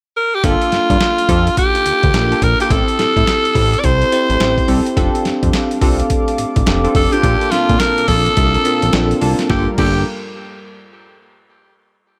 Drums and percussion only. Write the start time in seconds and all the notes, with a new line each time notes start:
0.44 kick, closed hi-hat
0.62 closed hi-hat
0.72 snare, closed hi-hat
0.90 kick, closed hi-hat
1.01 snare, clap, closed hi-hat
1.18 closed hi-hat
1.29 kick, closed hi-hat
1.47 closed hi-hat
1.57 kick, closed hi-hat
1.75 closed hi-hat
1.86 closed hi-hat
2.03 kick, closed hi-hat
2.14 snare, clap, closed hi-hat
2.32 closed hi-hat
2.42 kick, closed hi-hat
2.60 closed hi-hat
2.71 kick, closed hi-hat
2.88 closed hi-hat
2.99 snare, closed hi-hat
3.17 kick, closed hi-hat
3.27 snare, clap, closed hi-hat
3.45 closed hi-hat
3.55 kick, open hi-hat
3.73 closed hi-hat
3.84 kick, closed hi-hat
4.02 closed hi-hat
4.12 closed hi-hat
4.30 closed hi-hat
4.40 snare, clap, closed hi-hat
4.58 kick, closed hi-hat
4.68 open hi-hat
4.86 closed hi-hat
4.97 kick, closed hi-hat
5.15 closed hi-hat
5.25 snare, closed hi-hat
5.43 kick, closed hi-hat
5.53 snare, clap, closed hi-hat
5.71 closed hi-hat
5.81 kick, open hi-hat
6.00 closed hi-hat
6.10 kick, closed hi-hat
6.28 closed hi-hat
6.38 closed hi-hat
6.56 kick, closed hi-hat
6.66 snare, clap, closed hi-hat
6.85 closed hi-hat
6.95 kick, open hi-hat
7.13 closed hi-hat
7.23 kick, closed hi-hat
7.41 closed hi-hat
7.52 snare, closed hi-hat
7.69 kick, closed hi-hat
7.80 snare, clap, closed hi-hat
7.98 closed hi-hat
8.08 kick, open hi-hat
8.26 closed hi-hat
8.37 kick, closed hi-hat
8.55 closed hi-hat
8.65 closed hi-hat
8.82 closed hi-hat
8.93 snare, clap, closed hi-hat
9.11 closed hi-hat
9.21 open hi-hat
9.39 snare, closed hi-hat
9.50 kick, snare
9.78 kick, crash